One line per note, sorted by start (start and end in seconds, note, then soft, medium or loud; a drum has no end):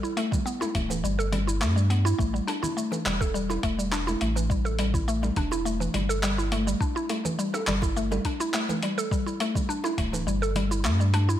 0.03 0.16 E4 medium
0.03 shaker soft
0.17 0.31 A3 loud
0.17 closed hi-hat medium
0.17 high bongo soft
0.32 0.44 G3 medium
0.32 kick loud
0.32 low conga loud
0.32 shaker medium
0.46 0.60 B3 medium
0.46 shaker medium
0.61 0.74 E4 loud
0.61 high bongo medium
0.61 high conga soft
0.61 shaker soft
0.75 1.03 D1 medium
0.75 0.89 A3 medium
0.75 kick medium
0.75 closed hi-hat medium
0.75 low conga medium
0.90 1.03 E3 medium
0.90 high bongo medium
0.90 shaker medium
1.04 1.63 G1 loud
1.04 1.17 G3 medium
1.04 shaker medium
1.19 1.31 A4 loud
1.19 shaker soft
1.32 1.47 G3 loud
1.32 closed hi-hat medium
1.32 high conga soft
1.32 low conga medium
1.47 1.61 E4 medium
1.47 shaker medium
1.61 2.14 G2 medium
1.61 1.76 A3 loud
1.61 clap medium
1.61 shaker medium
1.76 1.89 G3 medium
1.76 shaker soft
1.90 2.05 B3 medium
1.90 closed hi-hat medium
1.90 high conga medium
2.05 2.18 E4 loud
2.05 shaker medium
2.19 2.41 A1 loud
2.19 2.33 A3 loud
2.19 kick loud
2.19 shaker medium
2.34 2.46 G3 medium
2.34 shaker soft
2.47 2.61 D4 loud
2.47 closed hi-hat medium
2.47 high bongo soft
2.63 2.76 E4 loud
2.63 low conga loud
2.63 shaker medium
2.77 2.91 A3 medium
2.77 shaker medium
2.92 3.05 E3 medium
2.92 high bongo medium
2.92 shaker soft
3.05 3.58 E1 medium
3.05 3.19 G3 medium
3.05 clap medium
3.05 closed hi-hat medium
3.05 low conga medium
3.21 3.33 A4 loud
3.21 kick loud
3.21 high bongo medium
3.21 shaker medium
3.34 3.49 G3 loud
3.34 shaker medium
3.50 3.63 E4 medium
3.50 high bongo medium
3.50 shaker soft
3.63 4.15 E1 loud
3.63 3.78 A3 loud
3.63 kick medium
3.63 closed hi-hat medium
3.79 3.91 G3 medium
3.79 shaker medium
3.92 4.06 D4 loud
3.92 clap medium
3.92 shaker medium
4.07 4.20 E4 loud
4.07 high bongo medium
4.07 high conga medium
4.07 shaker soft
4.21 5.31 A1 medium
4.21 4.35 A3 medium
4.21 closed hi-hat medium
4.36 4.49 E3 medium
4.36 shaker medium
4.50 4.63 G3 medium
4.50 kick loud
4.50 shaker medium
4.65 4.77 A4 medium
4.65 shaker soft
4.79 4.93 G3 medium
4.79 closed hi-hat loud
4.79 high bongo soft
4.94 5.07 E4 medium
4.94 kick medium
4.94 low conga loud
4.94 shaker medium
5.08 5.22 A3 loud
5.08 shaker medium
5.23 5.35 G3 medium
5.23 high bongo medium
5.23 shaker soft
5.36 5.88 E1 medium
5.36 5.50 D4 loud
5.36 kick medium
5.36 closed hi-hat medium
5.36 low conga medium
5.51 5.65 E4 loud
5.51 high bongo medium
5.51 shaker medium
5.65 5.80 A3 medium
5.65 shaker medium
5.80 5.93 E3 medium
5.80 shaker soft
5.94 6.75 G1 medium
5.94 6.08 G3 medium
5.94 closed hi-hat medium
5.94 high conga soft
5.94 low conga loud
6.09 6.22 A4 loud
6.09 shaker medium
6.23 6.37 G3 loud
6.23 clap medium
6.23 shaker medium
6.38 6.51 E4 medium
6.38 shaker soft
6.52 6.66 A3 loud
6.52 closed hi-hat medium
6.52 high conga medium
6.67 6.79 G3 medium
6.67 shaker medium
6.80 6.94 D4 loud
6.80 kick loud
6.80 shaker medium
6.96 7.09 E4 loud
6.96 shaker soft
7.09 7.24 A3 medium
7.09 closed hi-hat loud
7.09 high bongo soft
7.25 7.38 E3 medium
7.25 low conga medium
7.25 shaker medium
7.39 7.52 G3 medium
7.39 shaker medium
7.54 7.66 A4 loud
7.54 high bongo medium
7.54 shaker soft
7.67 8.19 G1 medium
7.67 7.82 G3 loud
7.67 clap medium
7.67 closed hi-hat loud
7.67 low conga medium
7.82 7.96 E4 medium
7.82 kick loud
7.82 high bongo medium
7.82 shaker medium
7.97 8.11 A3 loud
7.97 shaker medium
8.12 8.24 G3 medium
8.12 high bongo medium
8.12 shaker soft
8.25 8.39 D4 loud
8.25 kick medium
8.25 closed hi-hat medium
8.40 8.53 E4 loud
8.40 shaker medium
8.54 8.68 A3 medium
8.54 clap medium
8.54 shaker medium
8.69 8.82 E3 medium
8.69 high bongo medium
8.69 high conga medium
8.69 shaker soft
8.83 8.96 G3 medium
8.83 closed hi-hat medium
8.98 9.10 A4 loud
8.98 shaker medium
9.11 9.26 G3 loud
9.11 kick loud
9.11 shaker medium
9.26 9.40 E4 medium
9.26 shaker soft
9.40 9.55 A3 loud
9.40 closed hi-hat loud
9.40 high bongo medium
9.55 9.68 G3 medium
9.55 kick loud
9.55 low conga medium
9.55 shaker medium
9.69 9.83 D4 loud
9.69 shaker medium
9.84 9.97 E4 loud
9.84 high bongo medium
9.84 shaker soft
9.98 10.26 D1 medium
9.98 10.12 A3 medium
9.98 kick medium
9.98 closed hi-hat loud
9.98 low conga medium
10.13 10.26 E3 medium
10.13 high bongo medium
10.13 shaker medium
10.27 10.86 G1 loud
10.27 10.40 G3 medium
10.27 shaker medium
10.42 10.54 A4 loud
10.42 shaker soft
10.55 10.70 G3 loud
10.55 closed hi-hat medium
10.55 high conga soft
10.55 low conga medium
10.71 10.84 E4 medium
10.71 shaker medium
10.85 11.37 G2 medium
10.85 10.99 A3 loud
10.85 clap medium
10.85 shaker medium
11.00 11.12 G3 medium
11.00 shaker soft
11.14 11.27 D4 loud
11.14 closed hi-hat medium
11.14 high conga medium
11.29 11.40 E4 loud
11.29 shaker medium